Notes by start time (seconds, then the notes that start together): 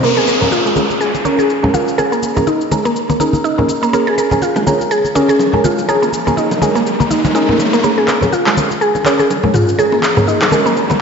0.03 A#3 C#4 G#4 A#4, downlifter, muted conga, shaker
0.17 G#4
0.28 A#4, muted conga, shaker
0.41 C#4 G#4 A#4, high conga, low conga, shaker
0.51 F4, muted conga, shaker
0.66 G#3, shaker
0.76 C#4 G#4 A#4, high conga, shaker
0.90 muted conga, shaker
1.01 G#4, shaker
1.15 muted conga, shaker
1.25 C#4 G#4 A#4, high conga, shaker
1.38 G#4, muted conga, shaker
1.50 shaker
1.63 G#3 C#4 G#4 A#4, low conga
1.74 F4, muted conga, high conga, shaker
1.88 shaker
1.98 C#4 G#4 A#4, muted conga, shaker
2.12 A#3, shaker
2.23 muted conga, shaker
2.36 A#3 C#4 G#4 A#4, high conga, low conga, shaker
2.47 D#4, muted conga, shaker
2.61 shaker
2.71 G#3 C#4 G#4 A#4, high conga, shaker
2.85 A#3, muted conga, shaker
2.96 shaker
3.10 A#3, muted conga, high conga, shaker
3.20 C#4 D#4 G#4 A#4, high conga, shaker
3.33 muted conga, high conga, shaker
3.44 D#4, shaker
3.58 A#3 C#4 G#4 A#4, low conga
3.68 muted conga, shaker
3.83 A#3, shaker
3.93 A#3 C#4 G#4 A#4, riser, muted conga, shaker
4.07 G#4, high bongo
4.18 A#4, muted conga, shaker
4.31 C#4 G#4 A#4, high conga, low conga, shaker
4.42 F4, muted conga, shaker
4.56 G#3, high bongo, low bongo, shaker
4.66 C#4 G#4 A#4, high conga, shaker
4.81 muted conga, shaker
4.91 G#4, shaker
5.05 muted conga, shaker
5.15 C#4 G#4 A#4, high bongo, high conga, shaker
5.29 G#4, muted conga, shaker
5.39 low bongo, shaker
5.53 G#3 C#4 G#4 A#4, low conga
5.64 F4, muted conga, high conga, shaker
5.79 low bongo, shaker
5.88 C#4 G#4 A#4, muted conga, shaker
6.02 A#3, high bongo, shaker
6.13 muted conga, shaker
6.27 A#3 C#4 G#4 A#4, high conga, low conga, shaker
6.37 D#4, muted conga, shaker
6.51 high bongo, low bongo, shaker
6.62 G#3 C#4 G#4 A#4, high conga, shaker
6.75 A#3, muted conga, shaker
6.87 shaker
7.00 A#3, muted conga, high conga, shaker
7.10 D#4, high conga, shaker
7.25 low bongo, muted conga, high conga, shaker
7.35 C#4 D#4 G#4 A#4, shaker
7.49 A#3, low conga
7.58 low bongo, muted conga, shaker
7.73 A#3, shaker
7.84 A#3 C#4 G#4 A#4, riser, muted conga, shaker
7.98 G#4, high bongo
8.08 A#4, clap, muted conga, shaker
8.21 C#4 G#4 A#4, high conga, low conga, shaker
8.32 F4, muted conga, shaker
8.46 G#3, clap, high bongo, low bongo, shaker
8.57 C#4 G#4 A#4, high conga, shaker
8.71 muted conga, shaker
8.81 G#4, shaker
8.95 low bongo, muted conga, shaker
9.04 C#4 G#4 A#4, clap, high conga, shaker
9.19 G#4, muted conga, shaker
9.30 low bongo, shaker
9.43 G#3 C#4 G#4 A#4, low conga
9.54 F4, mid tom, muted conga, high conga, shaker
9.69 shaker
9.79 C#4 G#4 A#4, muted conga, shaker
9.92 A#3, high bongo
10.02 clap, muted conga, shaker
10.17 A#3 C#4 G#4 A#4, mid tom, high conga, low conga, shaker
10.27 D#4, muted conga, shaker
10.41 clap, high bongo, low bongo, shaker
10.51 G#3 C#4 G#4 A#4, high conga, shaker
10.66 A#3, muted conga, shaker
10.76 low bongo, shaker
10.90 A#3, muted conga, high conga, shaker